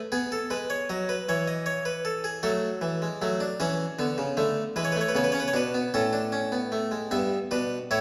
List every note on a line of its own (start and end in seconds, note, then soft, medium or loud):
0.12 0.36 B3 medium
0.12 0.30 G#4 medium
0.32 0.50 A4 medium
0.50 0.74 G#3 medium
0.50 0.69 B4 medium
0.70 0.88 C#5 medium
0.89 1.13 F#3 medium
0.89 1.08 D#5 medium
1.09 1.27 B4 medium
1.29 2.41 E3 medium
1.29 1.47 C#5 medium
1.48 1.66 D#5 medium
1.66 1.85 C#5 medium
1.85 2.04 B4 medium
2.05 2.24 A4 medium
2.24 2.43 G#4 medium
2.43 3.00 F#3 medium
2.43 2.67 A3 medium
2.43 3.56 A4 medium
2.81 3.06 E3 medium
3.02 3.21 G#3 medium
3.22 3.46 F#3 medium
3.22 3.40 A3 medium
3.40 3.59 D4 medium
3.60 3.84 E3 medium
3.60 3.84 C#4 medium
3.60 4.73 G#4 medium
3.99 4.17 D3 medium
3.99 4.23 B3 medium
4.18 4.37 C#3 medium
4.37 4.62 D3 medium
4.37 4.61 A3 medium
4.76 5.00 E3 medium
4.76 4.95 G#3 medium
4.76 4.84 B4 medium
4.85 4.93 C#5 medium
4.92 5.15 A3 medium
4.92 5.00 B4 medium
5.01 5.09 C#5 medium
5.09 5.17 B4 medium
5.15 5.39 C#3 medium
5.15 5.34 B3 medium
5.15 5.25 C#5 medium
5.24 5.32 B4 medium
5.32 5.54 C#4 medium
5.32 5.40 C#5 medium
5.40 5.48 B4 medium
5.48 5.56 C#5 medium
5.53 5.78 B2 medium
5.53 5.73 D4 medium
5.53 5.93 B4 medium
5.74 5.94 B3 medium
5.94 7.09 A2 medium
5.94 6.13 C#4 medium
5.94 7.09 A4 medium
6.13 6.32 D4 medium
6.32 6.52 C#4 medium
6.52 6.72 B3 medium
6.72 6.92 A3 medium
6.91 7.11 G#3 medium
7.11 7.36 G2 medium
7.11 7.36 B3 medium
7.11 7.36 E5 medium
7.51 7.76 B2 medium
7.51 7.76 D4 medium
7.51 7.76 B4 medium
7.91 8.01 A2 medium
7.91 8.01 E4 medium
7.91 8.01 C#5 medium